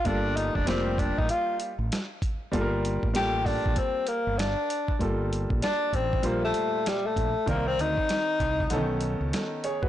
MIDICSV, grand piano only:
0, 0, Header, 1, 2, 480
1, 0, Start_track
1, 0, Key_signature, -2, "minor"
1, 0, Tempo, 618557
1, 42, Time_signature, 4, 2, 24, 8
1, 7674, End_track
2, 0, Start_track
2, 0, Title_t, "Grand piano"
2, 0, Program_c, 0, 0
2, 34, Note_on_c, 0, 55, 63
2, 36, Note_on_c, 0, 58, 63
2, 46, Note_on_c, 0, 65, 62
2, 52, Note_on_c, 0, 69, 74
2, 449, Note_off_c, 0, 55, 0
2, 450, Note_off_c, 0, 58, 0
2, 455, Note_off_c, 0, 65, 0
2, 458, Note_off_c, 0, 69, 0
2, 509, Note_on_c, 0, 55, 78
2, 515, Note_on_c, 0, 58, 69
2, 523, Note_on_c, 0, 65, 66
2, 531, Note_on_c, 0, 67, 82
2, 1313, Note_off_c, 0, 55, 0
2, 1316, Note_off_c, 0, 58, 0
2, 1319, Note_off_c, 0, 65, 0
2, 1324, Note_off_c, 0, 67, 0
2, 1952, Note_on_c, 0, 55, 88
2, 1958, Note_on_c, 0, 58, 76
2, 1966, Note_on_c, 0, 65, 82
2, 1971, Note_on_c, 0, 69, 71
2, 2026, Note_on_c, 0, 70, 89
2, 2028, Note_off_c, 0, 69, 0
2, 2368, Note_off_c, 0, 55, 0
2, 2371, Note_off_c, 0, 58, 0
2, 2375, Note_off_c, 0, 65, 0
2, 2405, Note_off_c, 0, 70, 0
2, 2432, Note_on_c, 0, 55, 73
2, 2435, Note_on_c, 0, 58, 74
2, 2445, Note_on_c, 0, 65, 67
2, 2452, Note_on_c, 0, 69, 85
2, 3234, Note_off_c, 0, 55, 0
2, 3235, Note_off_c, 0, 58, 0
2, 3240, Note_off_c, 0, 65, 0
2, 3244, Note_off_c, 0, 69, 0
2, 3873, Note_on_c, 0, 55, 63
2, 3882, Note_on_c, 0, 58, 58
2, 3884, Note_on_c, 0, 65, 57
2, 3894, Note_on_c, 0, 69, 72
2, 4674, Note_off_c, 0, 55, 0
2, 4679, Note_off_c, 0, 58, 0
2, 4680, Note_off_c, 0, 65, 0
2, 4685, Note_off_c, 0, 69, 0
2, 4830, Note_on_c, 0, 55, 70
2, 4837, Note_on_c, 0, 46, 60
2, 4841, Note_on_c, 0, 65, 67
2, 4851, Note_on_c, 0, 72, 80
2, 5633, Note_off_c, 0, 55, 0
2, 5636, Note_off_c, 0, 46, 0
2, 5638, Note_off_c, 0, 65, 0
2, 5644, Note_off_c, 0, 72, 0
2, 5789, Note_on_c, 0, 51, 67
2, 5797, Note_on_c, 0, 60, 59
2, 5804, Note_on_c, 0, 74, 56
2, 5810, Note_on_c, 0, 70, 74
2, 6592, Note_off_c, 0, 51, 0
2, 6597, Note_off_c, 0, 60, 0
2, 6600, Note_off_c, 0, 74, 0
2, 6603, Note_off_c, 0, 70, 0
2, 6752, Note_on_c, 0, 50, 68
2, 6758, Note_on_c, 0, 59, 74
2, 6766, Note_on_c, 0, 61, 78
2, 6774, Note_on_c, 0, 69, 98
2, 6801, Note_on_c, 0, 51, 75
2, 6818, Note_off_c, 0, 50, 0
2, 7228, Note_off_c, 0, 69, 0
2, 7240, Note_on_c, 0, 69, 51
2, 7245, Note_on_c, 0, 63, 41
2, 7469, Note_off_c, 0, 69, 0
2, 7472, Note_off_c, 0, 63, 0
2, 7483, Note_on_c, 0, 73, 67
2, 7486, Note_on_c, 0, 68, 60
2, 7557, Note_off_c, 0, 59, 0
2, 7561, Note_off_c, 0, 61, 0
2, 7578, Note_off_c, 0, 51, 0
2, 7620, Note_on_c, 0, 71, 64
2, 7622, Note_off_c, 0, 73, 0
2, 7623, Note_off_c, 0, 68, 0
2, 7627, Note_on_c, 0, 66, 56
2, 7674, Note_off_c, 0, 66, 0
2, 7674, Note_off_c, 0, 71, 0
2, 7674, End_track
0, 0, End_of_file